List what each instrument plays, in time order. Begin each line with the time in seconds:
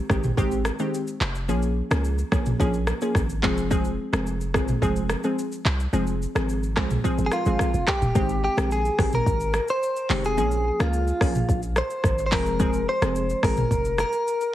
0.09 808-style bass G#1, synth pluck D#3 G#3 C4 G4, kick, cross-stick, shaker
0.23 mid tom, shaker
0.37 808-style bass G#1, synth pluck D#3 G#3 C4 G4, kick, shaker
0.51 shaker
0.65 cross-stick, shaker
0.79 synth pluck D#3 G#3 C4 G4, shaker
0.94 shaker
1.07 shaker
1.21 808-style bass F1, clap, shaker
1.35 shaker
1.48 808-style bass A#1, synth pluck F3 A#3 C#4 G#4, shaker
1.62 shaker
1.91 808-style bass C#2, synth pluck F3 A#3 C#4 G#4, cross-stick, shaker
2.04 shaker
2.18 shaker
2.32 808-style bass A#1, synth pluck F3 A#3 C#4 G#4, kick, cross-stick, shaker
2.46 mid tom, shaker
2.60 808-style bass A#1, synth pluck F3 A#3 C#4 G#4, kick, shaker
2.74 shaker
2.87 cross-stick, shaker
3.01 synth pluck F3 A#3 C#4 G#4, shaker
3.15 808-style bass G#1, kick, cross-stick, shaker
3.30 shaker
3.43 808-style bass F1, synth pluck F3 G#3 C4 G#4, kick, clap, shaker
3.57 shaker
3.71 synth pluck F3 G#3 C4 G#4, kick, shaker
3.85 shaker
4.13 808-style bass F1, synth pluck F3 G#3 C4 G#4, cross-stick, shaker
4.27 shaker
4.41 shaker
4.54 808-style bass G#1, synth pluck F3 G#3 C4 G#4, kick, cross-stick, shaker
4.68 mid tom, shaker
4.82 808-style bass F1, synth pluck F3 G#3 C4 G#4, kick, shaker
4.96 shaker
5.09 cross-stick, shaker
5.24 synth pluck F3 G#3 C4 G#4, shaker
5.39 shaker
5.52 shaker
5.65 808-style bass C2, clap, shaker
5.80 shaker
5.93 808-style bass F1, synth pluck F3 G#3 C4 G#4, shaker
6.07 shaker
6.22 shaker
6.35 808-style bass G#1, synth pluck F3 G#3 C4 G#4, cross-stick, shaker
6.49 shaker
6.63 shaker
6.76 808-style bass C2, synth pluck F3 G#3 C4 G#4, kick, cross-stick, clap
6.90 mid tom, shaker
7.04 synth pluck F3 G#3 C4 G#4, kick, shaker
7.18 808-style bass G#1, shaker
7.26 clean electric guitar G#4
7.32 clean electric guitar F4, cross-stick, shaker
7.46 808-style bass G#1, synth pluck F3 G#3 C4 G#4, shaker
7.59 kick, cross-stick, shaker
7.74 808-style bass F1, shaker
7.87 clean electric guitar G4, kick, cross-stick, clap, shaker
8.02 808-style bass D#1, mid tom, shaker
8.15 808-style bass G#1, synth pluck D#3 G#3 C4 G4, kick, shaker
8.29 shaker
8.44 clean electric guitar G4
8.57 808-style bass A#1, synth pluck D#3 G#3 C4 G4, cross-stick, shaker
8.71 clean electric guitar G#4, shaker
8.85 shaker
8.98 808-style bass G#1, synth pluck D#3 G#3 C4 G4, kick, cross-stick, open hi-hat, shaker
9.12 clean electric guitar A#4, mid tom, shaker
9.26 808-style bass G#1, kick, shaker
9.40 shaker
9.54 cross-stick, shaker
9.68 clean electric guitar C5, shaker
9.83 shaker
9.96 shaker
10.09 808-style bass F1, synth pluck D#3 G#3 C4 G4, clap, open hi-hat, shaker
10.24 clean electric guitar G#4, shaker
10.37 808-style bass A#1, synth pluck F3 A#3 C#4 G#4, shaker
10.51 shaker
10.80 808-style bass C#2, synth pluck F3 A#3 C#4 G#4, clean electric guitar F4, cross-stick, shaker
10.93 shaker
11.07 shaker
11.21 808-style bass A#1, synth pluck F3 A#3 C#4 G#4, kick, cross-stick, open hi-hat, shaker
11.35 mid tom, shaker
11.49 808-style bass A#1, kick, shaker
11.62 shaker
11.76 clean electric guitar C5, cross-stick, shaker
11.90 shaker
12.04 808-style bass G#1, kick, cross-stick, shaker
12.18 shaker
12.26 clean electric guitar C5
12.32 808-style bass F1, synth pluck F3 G#3 C4 G#4, clean electric guitar A#4, kick, clap, open hi-hat, shaker
12.46 shaker
12.59 synth pluck F3 G#3 C4 G#4, kick, shaker
12.73 shaker
12.89 clean electric guitar C5
13.02 808-style bass F1, synth pluck F3 G#3 C4 G#4, cross-stick, shaker
13.16 shaker
13.30 shaker
13.43 808-style bass G#1, synth pluck F3 G#3 C4 G#4, clean electric guitar A#4, kick, cross-stick, open hi-hat, shaker
13.57 mid tom, shaker
13.71 808-style bass F1, kick, shaker
13.85 shaker
13.98 clean electric guitar A#4, cross-stick, shaker
14.12 shaker
14.28 shaker
14.41 shaker